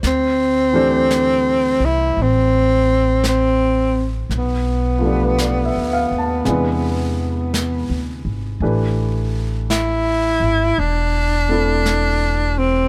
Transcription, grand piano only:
Already playing: C5
0.73 E3 A3 D4 G4 C5
4.99 F3 A3
5.05 D4 G4
5.11 B4
5.40 D5
5.65 E5
5.93 F5
6.18 A5
6.45 C3 G#3 D4 E4
6.50 B4
8.62 E3 A3 D4 G4 B4
11.49 A3 C4 E4 A4

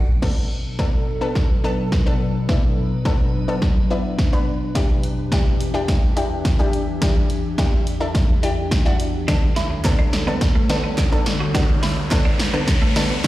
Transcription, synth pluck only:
0.22 B3 D4 A4
0.79 B3 D4 A4
1.21 B3 D4 A4
1.64 B3 D4 A4
2.06 B3 D4 A4
2.49 B3 D4 E4
3.05 B3 D4 A4
3.48 B3 D4 A4
3.90 B3 D4 E4
4.33 B3 D4 B4
4.75 D4 E4 G4
5.32 D4 E4 G4
5.74 D4 E4 G4
6.16 D4 E4 G4
6.59 D4 E4 G4
7.02 D4 E4 G4
7.58 D4 E4 G4
8.01 D4 E4 A4
8.43 D4 E4 G4
8.86 D4 E4 F#4
9.28 D3 B3 D4 A4
9.85 D3 B3 D4 A4
10.27 D3 B3 D4 A4
10.69 D3 B3 D4 A4
11.12 D3 B3 D4 A4
11.54 D3 B3 D4 F#4
12.11 D3 B3 D4 A4
12.53 D3 B3 D4 A4
12.96 D3 B3 D4 A4

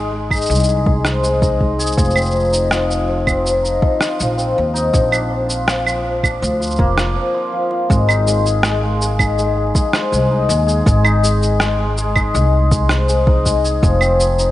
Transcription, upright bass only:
Already playing: G#1
0.50 C2
1.98 F1
4.21 A#1
4.58 D#2
4.94 A#1
6.42 D2
6.79 F1
7.90 G#1
10.12 C2
10.49 D#2
10.86 G#1
12.35 C2
13.83 F1

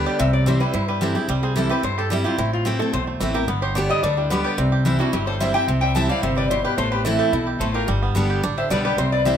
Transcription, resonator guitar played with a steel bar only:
0.06 D5
0.20 E5
0.33 D5
0.48 C5
0.61 B4
0.75 C5
0.88 B4
1.02 A4
1.16 G#4
1.29 G4
1.43 G#4
1.56 A4
1.71 B4
1.84 C5
1.99 A4
2.11 G4
2.26 F4
2.38 E4
2.53 F4
2.66 G4
2.79 A4
2.94 C5
3.35 A#4
3.48 B4
3.62 C5
3.76 D5
3.90 D#5
4.03 D5
4.17 G4
4.30 B4
4.44 D5
4.86 E4
5.00 F#4
5.14 G4
5.27 C5
5.41 E5
5.54 G5
5.68 E5
5.81 G5
5.95 A5
6.10 F5
6.23 E5
6.37 D5
6.50 C5
6.65 B4
6.78 C5
6.92 B4
7.05 A4
7.19 A4
7.60 C5
7.74 A#4
8.58 E5
8.71 D5
8.85 B4
8.98 C5
9.12 D5
9.25 E5

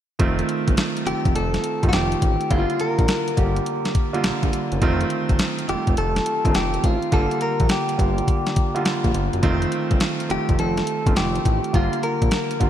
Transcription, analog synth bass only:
0.20 F1
0.68 G1
1.06 F1
1.25 F1
1.35 F1
1.83 G1
1.93 F1
2.22 A1
2.51 G1
2.99 A#1
3.37 G1
4.25 A#1
4.43 A#1
4.72 F#1
4.82 F1
5.30 G1
5.69 F1
5.87 F1
5.98 F1
6.45 G1
6.55 F1
6.84 A1
7.12 G1
7.60 A#1
7.99 G1
9.04 A#1
9.15 G1
9.34 F#1
9.43 F1
9.91 G1
10.30 F1
10.49 F1
10.59 F1
11.06 G1
11.17 F1
11.45 A1
11.74 G1
12.22 A#1
12.61 G1

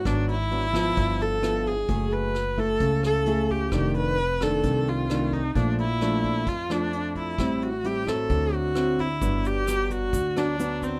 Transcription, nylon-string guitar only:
0.05 G#2 F#3 B3 D4
0.51 F#3 B3 D4
0.73 F3 B3 E4
0.96 G2
1.42 F3 B3 E4
1.89 F#3 A3 E4 G#4
2.58 A3 E4
2.81 C#3
3.27 A3 E4 G#4
3.73 F2 D#3 A3 D4
4.42 D#3 A3 D4
4.64 C3
5.10 D#3 A3 D4
5.56 A#2 F3 A3 D4
6.01 F3 A3 D4
6.48 F2
6.70 F3 A3 D4
7.39 A2 G3 C4 E4
7.84 G3 C4 E4
8.07 F#3 C4 E4
8.30 D3
8.76 F#3 C4 E4
9.22 G2 F#3 B3 D4
9.68 F#3 B3 D4
10.14 D3
10.37 F#3 B3 D4
10.59 F#3 B3 D4

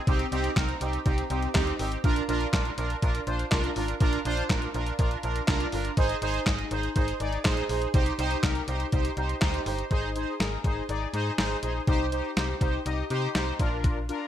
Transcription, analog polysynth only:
0.07 C4 D#4 G4
0.32 C4 D#4 G4
0.56 C4 D#4 A#4
0.81 C4 D#4 G4
1.05 C4 D#4 G4
1.30 C4 D#4 G4
1.55 C4 D#4 G4
1.79 C4 D#4 G4
2.04 D4 F4 A#4
2.28 D4 F4 A#4
2.53 D4 F4 A#4
2.77 D4 F4 A#4
3.02 D4 F4 A#4
3.27 D4 F4 C5
3.51 D4 F4 A#4
3.76 D4 F4 A#4
4.01 D4 F4 A#4
4.25 D4 F4 C5
4.50 D4 F4 A#4
4.74 D4 F4 A#4
4.99 D4 F4 A#4
5.24 D4 F4 A#4
5.48 D4 F4 A#4
5.73 D4 F4 A#4
5.97 D#4 G#4 C5
6.22 D#4 G#4 C5
6.47 D#4 G#4 D#5
6.71 D#4 G#4 C5
6.96 D#4 G#4 C5
7.20 D#4 G#4 D5
7.45 D#4 G#4 C5
7.70 D#4 G#4 C5
7.94 D#4 G4 C5
8.19 D#4 G4 C5
8.43 D#4 G4 A#4
8.68 D#4 G4 C5
8.93 D#4 G4 C5
9.17 D#4 G4 C5
9.42 D#4 G4 C5
9.66 D#4 G4 C5
9.91 D#4 G#4 C5
10.16 D#4 G#4 C5
10.40 D#4 G#4 A#4
10.65 D#4 G#4 C5
10.89 D#4 G#4 D5
11.14 D#4 G#4 C5
11.39 D#4 G#4 C5
11.63 D#4 G#4 C5
11.88 D#4 G4 C5
12.12 D#4 G4 C5
12.37 D#4 G4 C5
12.61 D#4 G4 C5
12.86 D#4 G4 D#5
13.10 D#4 G4 C5
13.35 D#4 G4 C5
13.59 D4 F4 A#4
14.09 D4 F4 A#4

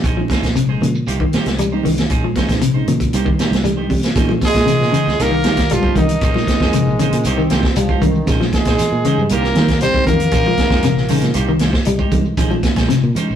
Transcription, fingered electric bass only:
0.04 A#1
0.43 A#1
0.81 A#2
1.07 C2
1.33 muted fingered electric bass stroke
1.46 C2
1.85 C2
2.10 A#1
2.49 A#1
2.88 A#2
3.14 C2
3.39 muted fingered electric bass stroke
3.51 C2
3.90 C3
4.16 A#2
4.55 A#2
4.81 A#2
5.07 C#2
5.20 C2
5.45 D#2
5.71 C2
5.95 C2
6.22 A#1
6.60 F2
6.87 A#1
7.13 A#2
7.25 C2
7.51 C2
7.77 C2
8.02 C2
8.27 A#1
8.66 A#1
8.92 A#2
9.18 G2
9.31 C2
9.55 D#2
9.81 C2
9.94 muted fingered electric bass stroke
10.07 F2
10.32 A#1
10.70 F2
10.95 A#1
11.22 A#2
11.35 C2
11.61 C2
11.87 C2
12.11 C2
12.37 A#1
12.77 A#1
13.03 A#2
13.30 A#1

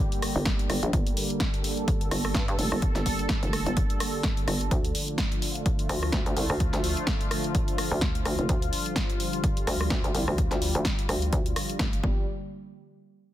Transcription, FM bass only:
0.36 G1
0.70 G1
0.83 A#1
0.93 G1
2.11 G1
2.35 G2
2.48 G2
2.59 F1
2.72 G1
2.96 G1
3.43 F1
3.66 G1
4.48 G1
4.71 D2
5.89 D2
6.13 D2
6.26 D2
6.37 C2
6.50 D2
6.73 D2
7.92 D2
8.26 D2
8.39 F1
8.49 D2
9.67 D2
9.91 D2
10.04 D2
10.15 C2
10.28 D2
10.51 D2
10.75 D2
11.09 D2
11.33 D2
11.80 F1
12.04 G1

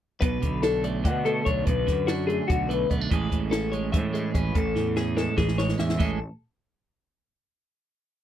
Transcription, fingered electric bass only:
0.22 B1
0.43 B1
1.05 B2
1.46 B1
1.67 B1
1.88 F#2
2.50 B1
2.91 B1
3.11 A1
3.32 A1
3.94 A2
4.34 A1
4.55 A1
4.75 E2
5.38 A1
5.79 E2
6.00 A1

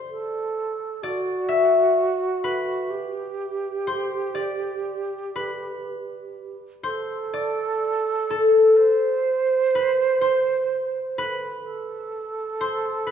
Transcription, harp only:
Already playing: C5 D5
1.03 D5
1.49 E5
2.44 B4
3.87 C5
4.35 D5
5.36 B4
6.83 C5
7.34 D5
8.31 A4
9.75 B4
10.21 C5
11.18 B4
12.61 C5
13.07 B4

